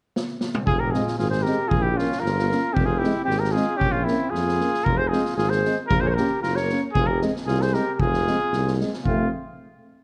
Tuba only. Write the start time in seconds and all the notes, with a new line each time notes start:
0.67 F1
1.19 G#1
1.72 A#1
2.23 G1
2.76 F1
3.28 G#1
3.81 A#1
4.33 F2
4.86 F1
5.37 G#1
5.90 A#1
6.43 F#1
6.95 F1
7.47 C2
8.00 F1
8.52 C2
9.05 F1